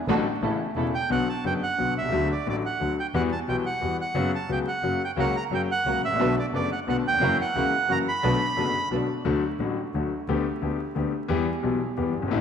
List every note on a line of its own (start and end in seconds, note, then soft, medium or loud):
0.08 0.22 A1 medium
0.08 0.23 A1 medium
0.08 0.23 A2 medium
0.08 0.23 D3 medium
0.08 0.23 F#3 medium
0.08 0.23 A3 medium
0.08 0.22 D4 medium
0.08 0.23 F#4 medium
0.08 0.23 A4 medium
0.42 0.57 A1 medium
0.42 0.57 A2 medium
0.42 0.56 C#3 soft
0.42 0.57 E3 soft
0.42 0.57 A3 soft
0.42 0.56 C#4 medium
0.42 0.57 E4 soft
0.42 0.57 E4 medium
0.42 0.57 A4 medium
0.76 0.91 E1 medium
0.76 0.91 E2 medium
0.76 0.91 C#3 soft
0.76 0.91 E3 soft
0.76 0.91 A3 soft
0.76 0.91 C#4 medium
0.76 0.91 E4 soft
0.76 0.91 E4 medium
0.76 0.91 A4 medium
0.95 1.10 G5 medium
1.10 1.25 B1 medium
1.10 1.25 B2 medium
1.10 1.24 D3 medium
1.10 1.25 F#3 medium
1.10 1.25 B3 medium
1.10 1.25 F#4 medium
1.10 1.29 F#5 medium
1.29 1.44 A5 medium
1.44 1.59 F#1 medium
1.44 1.59 F#2 medium
1.44 1.59 D3 soft
1.44 1.59 F#3 soft
1.44 1.59 B3 soft
1.44 1.59 F#4 soft
1.44 1.54 G5 medium
1.63 1.94 F#5 medium
1.78 1.93 B1 soft
1.78 1.93 B1 medium
1.78 1.93 B2 soft
1.78 1.93 D3 soft
1.78 1.93 F#3 soft
1.78 1.93 B3 soft
1.78 1.93 F#4 soft
1.96 2.12 C2 medium
1.96 2.28 E5 medium
2.01 2.05 B1 soft
2.05 2.09 C2 medium
2.05 2.12 C#2 medium
2.12 2.27 D2 medium
2.12 2.27 D3 medium
2.12 2.27 F#3 medium
2.12 2.27 A3 medium
2.12 2.27 F#4 medium
2.32 2.48 D5 medium
2.46 2.61 A1 medium
2.46 2.61 A2 medium
2.46 2.61 D3 soft
2.46 2.61 F#3 soft
2.46 2.61 A3 soft
2.46 2.61 F#4 soft
2.46 2.56 D5 medium
2.66 2.96 F#5 medium
2.80 2.95 D2 soft
2.80 2.95 D2 medium
2.80 2.95 D3 medium
2.80 2.94 F#3 soft
2.80 2.95 A3 soft
2.80 2.95 F#4 soft
3.00 3.07 G5 medium
3.14 3.28 E2 loud
3.14 3.28 E2 medium
3.14 3.28 E3 medium
3.14 3.28 G3 medium
3.14 3.29 B3 medium
3.14 3.29 F#4 medium
3.14 3.23 F#5 medium
3.32 3.39 A5 medium
3.48 3.62 B1 medium
3.48 3.62 B2 medium
3.48 3.62 E3 medium
3.48 3.62 G3 soft
3.48 3.62 B3 soft
3.48 3.62 F#4 medium
3.48 3.56 G5 medium
3.66 3.97 F#5 medium
3.81 3.96 E2 soft
3.81 3.96 E2 medium
3.81 3.96 E3 soft
3.81 3.96 G3 soft
3.81 3.96 B3 soft
3.81 3.96 F#4 medium
4.01 4.32 F#5 medium
4.15 4.30 F#1 medium
4.15 4.29 F#2 medium
4.15 4.29 C#3 medium
4.15 4.30 F#3 medium
4.15 4.30 B3 medium
4.15 4.30 F#4 medium
4.35 4.51 A5 medium
4.49 4.64 C#2 medium
4.49 4.64 C#3 soft
4.49 4.64 F#3 soft
4.49 4.64 B3 soft
4.49 4.64 F#4 soft
4.49 4.59 G5 medium
4.68 5.02 F#5 medium
4.83 4.98 F#1 medium
4.83 4.98 F#2 medium
4.83 4.98 C#3 soft
4.83 4.98 F#3 soft
4.83 4.98 A#3 soft
4.83 4.98 F#4 soft
5.05 5.11 G5 medium
5.16 5.32 C#2 medium
5.16 5.32 C#3 medium
5.16 5.32 F#3 medium
5.16 5.32 A#3 medium
5.16 5.32 C#4 medium
5.16 5.32 F#4 medium
5.16 5.32 A#4 medium
5.16 5.36 F#5 medium
5.37 5.44 A#5 medium
5.51 5.66 F#1 medium
5.51 5.66 F#2 soft
5.51 5.66 C#3 soft
5.51 5.66 F#3 soft
5.51 5.66 A#3 soft
5.51 5.66 C#4 soft
5.51 5.66 F#4 soft
5.51 5.66 A#4 medium
5.51 5.61 G5 medium
5.71 6.02 F#5 medium
5.85 6.00 C#2 medium
5.85 6.00 C#2 soft
5.85 6.00 C#3 medium
5.85 6.00 F#3 soft
5.85 6.01 A#3 soft
5.85 6.00 C#4 soft
5.85 6.00 F#4 soft
5.85 6.00 A#4 medium
6.03 6.11 G#1 soft
6.03 6.19 A1 medium
6.03 6.36 E5 medium
6.11 6.16 A1 medium
6.11 6.20 A#1 medium
6.19 6.34 B1 medium
6.19 6.34 B2 medium
6.19 6.34 D3 medium
6.19 6.34 A3 medium
6.19 6.34 B3 medium
6.19 6.34 D4 medium
6.19 6.34 F#4 medium
6.19 6.34 A4 medium
6.19 6.34 B4 medium
6.39 6.46 D5 medium
6.53 6.68 F#1 medium
6.53 6.68 F#2 medium
6.53 6.68 D3 soft
6.53 6.68 A3 soft
6.53 6.68 B3 soft
6.53 6.68 D4 soft
6.53 6.68 F#4 medium
6.53 6.68 A4 soft
6.53 6.68 B4 medium
6.53 6.71 D5 medium
6.72 6.80 F#5 medium
6.87 7.02 B1 medium
6.87 7.02 B2 medium
6.87 7.02 D3 soft
6.87 7.02 A3 soft
6.87 7.02 B3 soft
6.87 7.02 D4 soft
6.87 7.02 F#4 medium
6.87 7.02 A4 soft
6.87 7.02 B4 medium
6.87 6.97 F#5 medium
7.07 7.13 D#2 soft
7.07 7.38 G5 loud
7.13 7.17 E2 medium
7.18 7.36 F#1 loud
7.18 7.22 F2 medium
7.18 7.36 F#2 medium
7.18 7.35 E3 medium
7.18 7.36 F#3 medium
7.18 7.35 A#3 medium
7.18 7.36 C#4 medium
7.18 7.36 E4 medium
7.18 7.36 F#4 medium
7.22 7.36 A#4 medium
7.41 7.92 F#5 medium
7.55 7.69 C#2 medium
7.55 7.70 C#2 medium
7.55 7.70 C#3 medium
7.55 7.69 E3 medium
7.55 7.70 A#3 soft
7.55 7.70 C#4 soft
7.55 7.70 E4 medium
7.55 7.70 F#4 soft
7.55 7.70 F#4 medium
7.55 7.70 A#4 medium
7.88 8.03 F#1 medium
7.88 8.03 F#2 medium
7.88 8.03 E3 soft
7.88 8.03 F#3 medium
7.88 8.03 A#3 soft
7.88 8.03 C#4 soft
7.88 8.04 E4 medium
7.88 8.03 F#4 soft
7.88 8.04 F#4 soft
7.88 8.04 A#4 medium
7.88 7.99 A#5 loud
8.08 8.89 B5 loud
8.23 8.38 B1 medium
8.23 8.38 B1 loud
8.23 8.38 B2 medium
8.23 8.37 D3 medium
8.23 8.37 A3 medium
8.23 8.38 B3 medium
8.23 8.37 D4 medium
8.23 8.38 F#4 medium
8.23 8.37 A4 medium
8.23 8.37 B4 medium
8.56 8.72 F#1 medium
8.56 8.71 F#2 medium
8.56 8.71 D3 soft
8.56 8.72 A3 soft
8.56 8.71 B3 soft
8.56 8.72 D4 soft
8.56 8.72 F#4 soft
8.56 8.72 A4 soft
8.56 8.72 B4 medium
8.91 9.06 B1 medium
8.91 9.06 B2 soft
8.91 9.06 D3 soft
8.91 9.06 A3 soft
8.91 9.06 B3 soft
8.91 9.06 D4 soft
8.91 9.06 F#4 soft
8.91 9.06 A4 soft
8.91 9.06 B4 soft
9.25 9.40 D2 medium
9.25 9.40 D3 medium
9.25 9.40 F#3 medium
9.25 9.40 A3 medium
9.25 9.40 F#4 medium
9.59 9.74 A1 medium
9.59 9.74 A2 medium
9.59 9.74 D3 soft
9.59 9.74 F#3 soft
9.59 9.74 A3 soft
9.59 9.74 F#4 medium
9.94 10.08 D2 medium
9.94 10.09 D2 medium
9.94 10.09 D3 soft
9.94 10.09 F#3 soft
9.94 10.09 A3 soft
9.94 10.09 F#4 soft
10.28 10.43 D2 medium
10.28 10.43 D3 medium
10.28 10.43 A3 medium
10.28 10.43 B3 medium
10.28 10.43 G4 medium
10.62 10.76 D2 medium
10.62 10.77 D2 medium
10.62 10.76 D3 medium
10.62 10.76 A3 soft
10.62 10.77 B3 soft
10.62 10.77 G4 medium
10.95 11.10 D2 medium
10.95 11.11 D2 medium
10.95 11.10 D3 medium
10.95 11.10 A3 soft
10.95 11.10 B3 soft
10.95 11.10 G4 soft
11.28 11.44 E2 medium
11.28 11.44 E3 medium
11.28 11.44 G3 medium
11.28 11.44 B3 medium
11.28 11.44 G4 medium
11.63 11.78 B1 medium
11.63 11.78 B2 medium
11.63 11.78 E3 medium
11.63 11.78 G3 soft
11.63 11.78 B3 soft
11.63 11.78 G4 medium
11.97 12.12 E2 medium
11.97 12.12 E3 medium
11.97 12.12 G3 soft
11.97 12.12 B3 soft
11.97 12.12 G4 medium
12.14 12.31 G1 medium
12.19 12.23 F#1 soft
12.19 12.27 G1 medium
12.27 12.32 G#1 medium
12.27 12.41 A1 medium
12.27 12.41 A2 medium
12.27 12.41 D3 medium
12.27 12.41 E3 medium
12.27 12.41 A3 medium
12.32 12.41 E4 medium